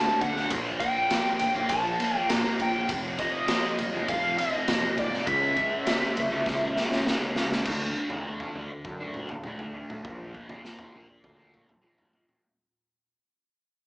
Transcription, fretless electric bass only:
0.21 0.50 D2 medium
0.51 0.79 A#1 loud
1.41 1.55 A#1 medium
1.56 1.69 A#1 loud
1.70 1.98 A#1 loud
2.29 2.44 A#1 loud
2.59 2.88 A#1 medium
2.89 3.17 F1 loud
3.78 3.93 F1 medium
3.94 4.08 F1 medium
4.08 4.36 F1 loud
4.69 4.82 F1 loud
4.98 5.26 G#2 medium
5.27 5.55 C#2 loud
6.17 6.31 C#2 medium
6.32 6.46 C#2 medium
6.46 6.74 C#2 medium
7.06 7.33 B1 medium
7.36 7.63 C#2 medium
7.66 7.94 D2 medium
8.55 8.83 D2 medium
8.84 9.27 F#2 medium
9.31 9.44 D2 medium
9.61 9.88 D2 medium
10.05 10.33 A#1 loud
10.95 11.23 A#1 medium
11.24 11.66 D2 medium
11.70 11.83 A#1 medium
12.00 12.27 G1 medium

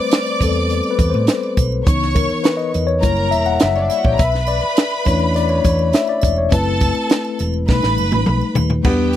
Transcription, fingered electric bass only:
0.41 0.80 E2 medium
0.99 1.12 E2 medium
1.15 1.27 A2 loud
1.58 1.84 B1 medium
1.87 2.26 C#2 medium
2.31 muted fingered electric bass stroke soft
2.75 3.00 E2 medium
3.03 3.33 F#1 loud
3.33 3.59 E1 medium
3.63 3.88 F#1 medium
4.05 4.18 A#1 medium
4.20 4.59 B1 loud
4.63 muted fingered electric bass stroke soft
5.07 5.59 E2 medium
5.65 5.91 E2 medium
6.23 6.49 E1 medium
6.52 6.92 F#1 loud
6.96 muted fingered electric bass stroke soft
7.40 7.66 E1 medium
7.69 7.82 B1 loud
7.84 7.97 A1 medium
7.99 8.12 F#1 medium
8.14 8.26 A1 medium
8.28 8.41 B1 loud
8.58 8.83 D#2 medium
8.85 9.16 E2 medium

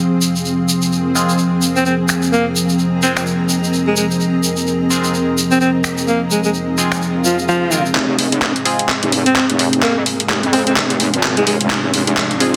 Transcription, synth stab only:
1.15 1.38 G#3 loud
1.15 1.38 C4 medium
1.15 1.38 F4 medium
1.15 1.38 G#4 loud
3.03 3.25 G#3 loud
3.03 3.25 C4 medium
3.03 3.25 F4 medium
3.03 3.25 G#4 loud
4.90 5.13 G#3 loud
4.90 5.13 C4 medium
4.90 5.13 F4 medium
4.90 5.13 G#4 loud
6.78 7.00 G#3 medium
6.78 7.00 C4 medium
6.78 7.00 F4 medium
6.78 7.00 G#4 loud
7.72 7.87 G#3 medium
7.72 7.87 C4 medium
7.72 7.87 F4 medium
7.72 7.87 A#4 medium
8.65 8.88 G#3 medium
8.65 8.88 C4 medium
8.65 8.88 F4 medium
8.65 8.88 G#4 loud
10.53 10.75 G#3 medium
10.53 10.75 C4 medium
10.53 10.75 F4 medium
10.53 10.75 G#4 loud
12.40 12.56 G#3 medium
12.40 12.56 C4 medium
12.40 12.56 F4 medium
12.40 12.56 G#4 loud

